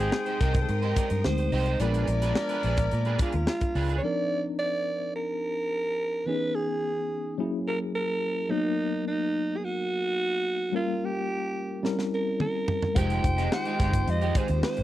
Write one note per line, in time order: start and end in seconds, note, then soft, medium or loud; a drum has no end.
0.00 1.21 G#3 medium
0.00 1.49 G#3 medium
0.00 1.79 G#3 medium
0.00 1.21 C4 medium
0.00 1.21 D#4 medium
0.00 0.10 D#4 medium
0.00 0.42 G#4 loud
0.00 1.22 C5 medium
0.00 1.49 C5 loud
0.00 1.22 G5 medium
0.00 1.49 G5 medium
0.00 1.79 G5 medium
0.00 1.79 C6 medium
0.00 1.79 D#6 loud
0.12 muted clean electric guitar stroke soft
0.12 snare loud
0.26 0.38 D#4 soft
0.26 0.38 G4 medium
0.26 0.37 C5 medium
0.26 closed hi-hat medium
0.40 0.64 C2 medium
0.40 0.54 D#4 medium
0.40 0.55 G4 loud
0.40 0.61 A#4 medium
0.40 0.53 C5 loud
0.40 kick loud
0.40 snare soft
0.40 closed hi-hat medium
0.54 muted clean electric guitar stroke soft
0.54 kick loud
0.54 closed hi-hat medium
0.62 0.71 A4 medium
0.68 0.92 G#2 loud
0.68 1.26 A#4 loud
0.68 muted clean electric guitar stroke soft
0.68 closed hi-hat medium
0.82 0.95 D#4 medium
0.82 0.96 G4 medium
0.82 0.96 C5 medium
0.82 closed hi-hat soft
0.96 1.07 D#4 medium
0.96 1.08 G4 medium
0.96 1.08 D5 medium
0.96 kick loud
0.96 closed hi-hat loud
1.10 1.22 G2 medium
1.10 muted clean electric guitar stroke soft
1.10 closed hi-hat medium
1.24 1.48 D2 medium
1.24 1.79 G#3 medium
1.24 1.80 C4 soft
1.24 1.80 D#4 soft
1.24 1.80 G4 soft
1.24 1.82 C5 loud
1.24 1.81 C5 medium
1.24 muted clean electric guitar stroke soft
1.24 snare loud
1.38 muted clean electric guitar stroke soft
1.38 closed hi-hat medium
1.52 1.76 C2 loud
1.52 1.66 D#4 medium
1.52 1.67 G4 loud
1.52 1.66 C5 loud
1.52 open hi-hat medium
1.66 1.78 D#4 medium
1.66 1.78 G4 medium
1.66 1.77 C5 medium
1.66 closed hi-hat medium
1.80 2.03 A#1 loud
1.80 3.72 F3 medium
1.80 3.99 G#3 medium
1.80 4.00 B3 medium
1.80 2.06 D4 medium
1.80 4.00 D4 medium
1.80 3.72 D4 medium
1.80 4.00 F4 medium
1.80 2.06 G#4 medium
1.80 3.72 A#4 loud
1.80 4.02 A#4 medium
1.80 4.01 A#4 medium
1.80 2.07 B4 medium
1.80 3.20 D5 loud
1.80 4.02 G#5 medium
1.80 4.02 B5 medium
1.80 4.02 D6 loud
1.80 closed hi-hat medium
1.94 closed hi-hat medium
2.07 2.31 A#1 loud
2.07 muted clean electric guitar stroke soft
2.07 closed hi-hat medium
2.22 2.34 D4 medium
2.22 2.33 G#4 medium
2.22 2.33 B4 medium
2.22 snare soft
2.22 closed hi-hat medium
2.35 muted clean electric guitar stroke soft
2.35 snare loud
2.49 2.61 D4 soft
2.49 2.61 G#4 medium
2.49 2.61 B4 medium
2.49 closed hi-hat medium
2.63 2.87 A#1 medium
2.63 2.78 D4 medium
2.63 2.78 G#4 medium
2.63 2.77 B4 loud
2.63 closed hi-hat medium
2.77 muted clean electric guitar stroke soft
2.77 kick loud
2.77 closed hi-hat medium
2.91 3.16 A#2 loud
2.91 muted clean electric guitar stroke soft
2.91 closed hi-hat medium
3.05 3.19 D4 medium
3.05 3.20 G#4 medium
3.05 3.20 B4 medium
3.05 closed hi-hat soft
3.19 3.31 D4 medium
3.19 3.47 F4 medium
3.19 3.31 G#4 medium
3.19 3.32 D5 medium
3.19 kick loud
3.19 closed hi-hat medium
3.32 3.46 D#2 medium
3.32 muted clean electric guitar stroke medium
3.32 closed hi-hat medium
3.47 3.94 F4 loud
3.47 muted clean electric guitar stroke soft
3.47 snare loud
3.61 muted clean electric guitar stroke soft
3.61 kick medium
3.61 closed hi-hat medium
3.75 3.99 C#2 medium
3.75 3.89 D4 medium
3.75 3.88 G#4 medium
3.75 3.87 B4 medium
3.75 open hi-hat medium
3.89 4.01 D4 soft
3.89 4.00 G#4 medium
3.89 4.00 B4 medium
3.89 closed hi-hat soft
3.97 4.05 C#5 medium
4.02 6.22 F3 medium
4.02 6.22 C4 medium
4.02 6.23 D4 medium
4.02 6.23 D#4 medium
4.02 6.23 A#4 medium
4.02 4.42 D5 loud
4.59 5.11 D5 loud
5.16 6.28 A#4 loud
6.26 7.36 E3 medium
6.26 7.36 B3 medium
6.26 7.36 C#4 medium
6.26 7.37 D#4 medium
6.26 7.37 G#4 medium
6.26 6.57 B4 loud
6.55 7.40 G#4 loud
7.38 8.47 F#3 medium
7.38 8.48 A#3 medium
7.38 8.48 C#4 medium
7.38 8.48 E4 medium
7.38 8.49 G#4 medium
7.67 7.80 A#4 loud
7.95 8.52 A#4 loud
8.49 10.68 F#3 medium
8.49 10.69 A#3 medium
8.49 10.69 B3 medium
8.49 9.06 D#4 loud
8.49 10.69 D#4 medium
8.49 10.70 A#4 medium
9.08 9.58 D#4 loud
9.57 9.66 G#4 medium
9.64 10.74 F#4 loud
10.72 11.82 G3 medium
10.72 11.82 A#3 medium
10.72 11.82 C#4 medium
10.72 11.83 F4 medium
10.72 11.07 F4 medium
10.72 11.83 A#4 medium
11.05 11.88 G4 loud
11.83 12.93 G3 medium
11.83 12.93 C4 medium
11.83 12.94 C#4 medium
11.83 12.94 E4 medium
11.83 12.94 A#4 medium
11.83 snare medium
11.99 snare medium
12.14 12.39 A#4 medium
12.40 12.98 A#4 loud
12.40 mid tom medium
12.68 floor tom loud
12.82 floor tom loud
12.94 13.19 F1 loud
12.94 14.83 D#3 medium
12.94 14.83 G#3 medium
12.94 13.22 G#3 medium
12.94 14.83 G#3 loud
12.94 14.83 C4 medium
12.94 14.83 D#4 medium
12.94 13.22 D#4 loud
12.94 14.83 F4 medium
12.94 14.83 G4 medium
12.94 14.83 G4 loud
12.94 14.83 G4 medium
12.94 13.22 G4 loud
12.94 14.83 C5 loud
12.94 14.83 C5 medium
12.94 13.52 G5 loud
12.94 kick loud
12.94 closed hi-hat medium
13.10 closed hi-hat medium
13.24 13.47 F1 loud
13.24 muted clean electric guitar stroke soft
13.24 kick medium
13.24 closed hi-hat medium
13.37 13.49 G#3 soft
13.37 13.49 D#4 medium
13.37 13.48 G4 medium
13.37 snare soft
13.37 closed hi-hat medium
13.52 14.11 G5 loud
13.52 muted clean electric guitar stroke soft
13.52 snare loud
13.65 13.77 G#3 medium
13.65 13.77 D#4 medium
13.65 13.76 G4 medium
13.65 closed hi-hat medium
13.78 14.03 G1 loud
13.78 13.93 G#3 medium
13.78 13.93 D#4 medium
13.78 13.92 G4 loud
13.78 kick loud
13.78 snare soft
13.78 closed hi-hat medium
13.93 muted clean electric guitar stroke soft
13.93 kick loud
13.93 closed hi-hat medium
14.07 14.31 F2 loud
14.07 14.39 D#5 loud
14.07 muted clean electric guitar stroke soft
14.07 closed hi-hat medium
14.21 14.34 G#3 medium
14.21 14.35 D#4 medium
14.21 14.35 G4 medium
14.21 closed hi-hat soft
14.35 14.46 G#3 medium
14.35 14.47 D#4 medium
14.35 14.47 G#4 medium
14.35 14.63 C5 loud
14.35 kick loud
14.35 closed hi-hat loud
14.48 14.61 D#2 medium
14.48 muted clean electric guitar stroke medium
14.48 closed hi-hat medium
14.63 14.83 C5 loud
14.63 muted clean electric guitar stroke soft
14.63 snare loud
14.77 14.83 G#1 loud
14.77 muted clean electric guitar stroke medium
14.77 closed hi-hat medium